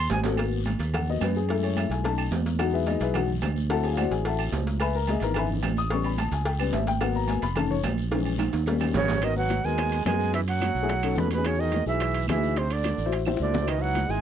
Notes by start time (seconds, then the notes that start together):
0.10 G#1 G#5, cowbell, high conga, low timbale, short guiro, maracas
0.24 C4 F#4 A4, cowbell, high conga, low timbale, short guiro, maracas
0.37 A#3 B3 F#4, cowbell, high conga, low agogo, long guiro, claves
0.53 high conga
0.65 cowbell, high conga, low timbale, low agogo, short guiro
0.79 D#2, cowbell, high conga, low agogo, short guiro
0.94 F#5, cowbell, high conga, low conga, low agogo, long guiro, claves
1.08 A#3 B3 F#4 D#5, high conga
1.21 F#2 B4, cowbell, high conga, low timbale, low agogo, short guiro, claves
1.35 G#4, short guiro
1.49 G#3 A3 E4 A4, cowbell, high conga, low agogo, long guiro
1.62 C#5, high conga, low agogo
1.76 E5, cowbell, high conga, low timbale, low agogo, short guiro, claves
1.90 B1 G#5, cowbell, short guiro
2.04 A3 C#4 D#4 A5, cowbell, high conga, low agogo, long guiro
2.18 high conga, low agogo, claves
2.31 E2, cowbell, high conga, low timbale, short guiro
2.45 cowbell, high conga, short guiro
2.58 F#3 G#3 D#4 F#4 F#5, cowbell, low agogo, long guiro, claves
2.73 E4 G#4 B4 E5
2.86 D#4 G#4 B4 D#5, cowbell, high conga, low timbale, low agogo, short guiro
3.00 B1 E4 G#4 B4 E5, cowbell, low agogo, short guiro
3.13 F#3 G#3 D#4 F#4 F#5, cowbell, high conga, low conga, low agogo, long guiro, claves
3.28 high conga, low conga
3.42 D2, cowbell, high conga, low timbale, low agogo, short guiro, claves
3.56 high conga, short guiro
3.69 F#3 C4 E4 A4 E5 F#5 A5, cowbell, high conga, low agogo, long guiro
3.84 G#4 G#5, high conga, low agogo
3.93 F5, cowbell, low timbale, low agogo, short guiro
3.98 F#4 C5 D5 F#5, high conga, claves
4.11 A1 G#4 G#5, cowbell, short guiro
4.25 A4 E5 F#5 A5, cowbell, high conga, low agogo, long guiro
4.39 high conga, low agogo, claves
4.52 C#2, cowbell, high conga, low timbale, short guiro
4.67 cowbell, short guiro
4.80 B4 E5 G#5 B5, cowbell, high conga, low agogo, long guiro, claves, maracas
4.94 A#4 A#5, high conga, maracas
5.07 G#4 D#5 E5 G#5, cowbell, high conga, low timbale, low agogo, short guiro, maracas
5.20 G#1 E3 B3 D#4 A#4 A#5, cowbell, low agogo, short guiro, maracas
5.34 B4 E5 G#5 B5, cowbell, high conga, low conga, low agogo, long guiro, claves, maracas
5.49 high conga, low conga, maracas
5.63 A1, cowbell, high conga, low timbale, low agogo, short guiro, claves, maracas
5.77 D#6, high conga, short guiro, maracas
5.90 G3 B3 C#4 C#6, cowbell, high conga, low agogo, long guiro, maracas
6.04 B5, low agogo, maracas
6.17 A5, cowbell, high conga, low timbale, low agogo, short guiro, claves, maracas
6.31 C#2 G#5, cowbell, high conga, short guiro, maracas
6.45 G5, cowbell, high conga, low agogo, long guiro, maracas
6.59 G3 B3 C#4 B4, high conga, low agogo, claves, maracas
6.73 G#1 E5, cowbell, high conga, low timbale, short guiro, maracas
6.86 G5, cowbell, high conga, short guiro, maracas
7.00 F#3 A#3 B3 F#5, cowbell, high conga, low agogo, claves, maracas
7.14 A#5, high conga, maracas
7.28 G#5, cowbell, high conga, low timbale, low agogo, short guiro, maracas
7.41 F1 B5, cowbell, high conga, low agogo, short guiro, maracas
7.55 D#3 A3 C#4 A5, cowbell, high conga, low conga, low agogo, long guiro, claves, maracas
7.70 C#5, high conga, low conga, maracas
7.83 A#1, cowbell, high conga, low timbale, low agogo, short guiro, claves, maracas
7.97 high conga, short guiro, maracas
8.11 E3 G#3 C#4, cowbell, high conga, high timbale, low agogo, long guiro, maracas
8.25 low agogo, maracas
8.38 cowbell, high conga, high timbale, low agogo, short guiro, claves, maracas
8.53 D#2, cowbell, high conga, high timbale, short guiro, maracas
8.66 G3 A#3 C#4, cowbell, high conga, low timbale, low agogo, long guiro, maracas
8.80 low conga, low timbale, low agogo, claves, maracas
8.94 G#1 C#3 C#5, cowbell, low conga, low timbale, short guiro, maracas
9.08 cowbell, low conga, low timbale, short guiro, maracas
9.21 D#3 B3 F#4 A#4 D#5, high bongo, high conga, high timbale, long guiro, claves, maracas
9.36 F#3 B3 F#4 B4 F#5, high conga, maracas
9.49 high bongo, high conga, high timbale, short guiro, maracas
9.64 D#2 G#3 B3 F#4 A#4 G#5, short guiro, maracas
9.78 high bongo, high conga, high timbale, long guiro, claves, maracas
9.92 high timbale, maracas
10.05 F#2 G#3 B3 F#4 A#4 G#5, high bongo, low bongo, high conga, high timbale, short guiro, claves, maracas
10.13 B3 F#4 G#4
10.19 high conga, short guiro, maracas
10.33 E3 E5, high bongo, high conga, high timbale, long guiro, maracas
10.47 F#3 F#5, high bongo, high conga, high timbale, maracas
10.61 high bongo, high conga, high timbale, short guiro, claves, maracas
10.75 B1, high conga, short guiro, maracas
10.83 A3 E4 G#4
10.89 high bongo, high timbale, long guiro, maracas
11.03 C#4 D#4 A4, high bongo, high conga, high timbale, claves, maracas
11.16 E2 B2 B4, high bongo, low bongo, high conga, short guiro, maracas
11.30 B2 B4, high bongo, high conga, high timbale, short guiro, maracas
11.38 C#4 D#4 G#4
11.44 C#3 D#4 F#4 G#4 C#5, high bongo, high conga, high timbale, long guiro, claves, maracas
11.58 D#3 D#4 F#4 G#4 D#5, high conga, maracas
11.72 high bongo, high conga, high timbale, short guiro, maracas
11.86 B1 E3 D#4 F#4 G#4 E5, short guiro, maracas
12.00 high bongo, high conga, high timbale, long guiro, claves, maracas
12.14 high conga, high timbale, maracas
12.27 D2 E3 D#4 F#4 G#4 E5, high bongo, low bongo, high conga, high timbale, short guiro, claves, maracas
12.36 D#4 F#4 G#4
12.42 high conga, short guiro, maracas
12.55 C3 C5, high bongo, high conga, high timbale, long guiro, maracas
12.71 D3 D5, high bongo, high timbale, maracas
12.84 high bongo, high conga, high timbale, short guiro, claves, maracas
12.98 A1, high conga, short guiro, maracas
13.05 E4 F#4 C5
13.11 high bongo, high conga, high timbale, long guiro, maracas
13.26 E4 F#4 C5, high bongo, high timbale, claves, maracas
13.37 C#2 D3, high bongo, high conga, short guiro, maracas
13.41 D5
13.53 low bongo, high conga, low timbale, short guiro, maracas
13.61 E4 F#4 C5
13.67 D#3 D#4 E4 B4 D#5, high bongo, high timbale, long guiro, claves, maracas
13.81 F#3 D#4 E4 B4 F#5, high conga, maracas
13.95 high bongo, high conga, high timbale, short guiro, maracas
14.08 G#1 G#3 D#4 E4 G#4 G#5, short guiro, maracas